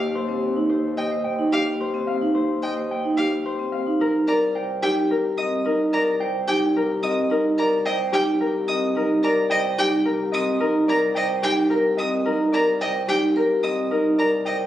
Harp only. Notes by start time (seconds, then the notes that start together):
Already playing: G4 C5 D#5 G5
0.15 C5
0.69 C5
0.97 D#5
1.24 G5
1.52 G4
1.80 C5
2.07 F5
2.35 C5
2.63 D#5
2.91 G5
3.18 G4
3.46 C5
3.72 F5
4.01 A#4
4.28 D5
4.55 G5
4.82 G4
5.11 A#4
5.38 D#5
5.66 A#4
5.94 D5
6.20 G5
6.48 G4
6.76 A#4
7.04 D#5
7.31 A#4
7.59 D5
7.85 G5
8.12 G4
8.41 A#4
8.69 D#5
8.96 A#4
9.24 D5
9.50 G5
9.78 G4
10.05 A#4
10.32 D#5
10.60 A#4
10.88 D5
11.15 G5
11.42 G4
11.70 A#4
11.97 D#5
12.26 A#4
12.52 D5
12.81 G5
13.08 G4
13.37 A#4
13.64 D#5
13.91 A#4
14.18 D5
14.45 G5